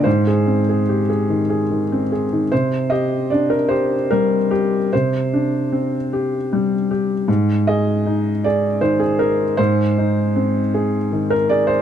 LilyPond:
\new Staff \with { instrumentName = "Felt piano" } { \time 6/8 \key c \minor \tempo 4. = 51 << { c''2~ c''8 r8 | c''8 ees''8 d''16 bes'16 c''8 bes'8 g'8 | c''2~ c''8 r8 | r8 ees''4 d''8 c''16 aes'16 bes'8 |
c''2~ c''16 bes'16 d''16 c''16 | } \\ { aes,16 aes'16 c'16 aes'16 g'16 aes'16 ees16 aes'16 ees16 c'16 aes'16 ees16 | c8 g'8 d'8 g'8 g8. r16 | c8 d'8 c'8 g'8 g8 g'8 | aes,8 aes'8 ees'8 aes'8 ees8 aes'8 |
aes,8 ees'8 c'8 aes'8 ees8 aes'8 | } >> }